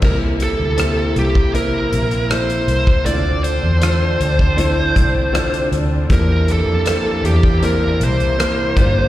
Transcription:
<<
  \new Staff \with { instrumentName = "Lead electric guitar" } { \time 4/4 \key c \mixolydian \tempo 4 = 79 bes'8 a'4 g'8 bes'4 c''4 | d''8 c''2. r8 | bes'8 a'4 g'8 bes'8 c''4. | }
  \new Staff \with { instrumentName = "Grand piano" } { \time 4/4 \key c \mixolydian << { a'16 r2. r8. | r1 | r1 | } \\ { <bes c' e' g'>4 <bes c' e' g'>4 <bes c' e' bes'>4 <bes c' e' a'>4 | <a c' d' e' f'>4 <a c' d' f'>4 <a c' d' e'>4 <a c' d' f'>4 | <bes c' e' g'>4 <bes c' e' g'>4 <bes c' e' g'>4 <bes c' e' bes'>8 <bes d' f' g'>8 | } >> }
  \new Staff \with { instrumentName = "Grand piano" } { \clef bass \time 4/4 \key c \mixolydian c4. r2 r8 | d4. r2 r8 | e4. r2 g,8 | }
  \new Staff \with { instrumentName = "String section" } { \time 4/4 \key c \mixolydian <c bes e'>1 | <d c' d'>1 | <e bes d'>2.~ <e bes d'>8 <g bes f'>8 | }
  \new Staff \with { instrumentName = "Fingered electric bass" } { \clef bass \time 4/4 \key c \mixolydian c,8. d,8. c,4 bes,,4 c,8 | d,8. e,8. d,4 c,4 d,8 | e,8. f,8. e,4 c,4 g,,8 | }
  \new DrumStaff \with { instrumentName = "Drums" } \drummode { \time 4/4 <cymc bd>8 hh8 <hh ss>8 hh16 bd16 hh8 hh16 hh16 <hh ss>16 hh16 hh16 bd16 | hh8 hh8 <hh ss>8 hh16 bd16 hh8 <hh bd>8 <hh ss>16 hh16 hh8 | <hh bd>8 hh8 <hh ss>8 hh16 bd16 hh8 hh16 hh16 <hh ss>8 <hh bd>8 | }
>>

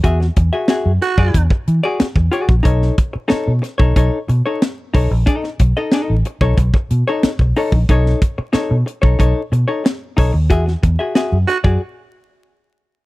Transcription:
<<
  \new Staff \with { instrumentName = "Hollow-body jazz guitar" } { \time 4/4 \key b \mixolydian \tempo 4 = 92 <fis' gis' e''>16 r8 <fis' gis' e''>16 <fis' gis' e''>16 r8 <fis' gis' d''>16 r8. <fis' gis' d''>16 r8 <fis' gis' d''>16 r16 | <dis' a' cis''>8 r8 <dis' a' cis''>16 r8 <dis' a' cis''>16 <dis' a' cis''>16 r8 <dis' a' cis''>16 r8 <dis' a' cis''>16 r16 | <dis' a' dis''>16 r8 <dis' a' dis''>16 <dis' a' dis''>16 r8 <dis' a' cis''>16 r8. <dis' a' cis''>16 r8 <dis' a' cis''>16 r16 | <dis' a' cis''>8 r8 <dis' a' cis''>16 r8 <dis' a' cis''>16 <dis' a' cis''>16 r8 <dis' a' cis''>16 r8 <dis' a' cis''>16 r16 |
<fis' gis' e''>16 r8 <fis' gis' e''>16 <fis' gis' e''>16 r8 <fis' gis' d''>16 r2 | }
  \new Staff \with { instrumentName = "Baritone saxophone" } { \time 4/4 \key b \mixolydian r4. fis'8. r4. r16 | r1 | r1 | r1 |
r4. fis'16 r2 r16 | }
  \new Staff \with { instrumentName = "Fingered electric bass" } { \clef bass \time 4/4 \key b \mixolydian e,8 e,16 r8 fis,16 r16 fis,16 e,16 r16 e16 r8 e,16 r16 ais,,16 | b,,8 r8. b,16 r16 b,,16 b,,16 r16 b,16 r8. b,,16 ais,,16 | r8 b,,16 r8 a,,16 r16 b,,16 b,,16 r16 b,16 r8 b,,16 r16 ais,,16 | b,,8 r8. b,16 r16 b,,16 b,,16 r16 b,16 r8. b,,16 dis,16 |
e,8 e,16 r8 fis,16 r16 fis,16 r2 | }
  \new DrumStaff \with { instrumentName = "Drums" } \drummode { \time 4/4 <hh bd>16 sn16 <hh bd>8 <hh sn>8 hh16 bd16 <hh bd>16 bd16 hh8 <hh sn>16 bd16 hh16 bd16 | <hh bd>16 sn16 <hh bd>8 <hh sn>8 <hh sn>16 bd16 <hh bd>8 hh8 <hh sn>8 <hho bd>8 | <hh bd>16 sn16 <hh bd>8 <hh sn>8 hh16 bd16 <hh bd>16 bd16 hh8 <hh sn>16 bd16 hho16 bd16 | <hh bd>16 sn16 <hh bd>8 <hh sn>8 hh16 bd16 <hh bd>8 hh8 <hh sn>8 <hho bd>8 |
<hh bd>16 sn16 <hh bd>8 <hh sn>8 hh16 bd16 r4 r4 | }
>>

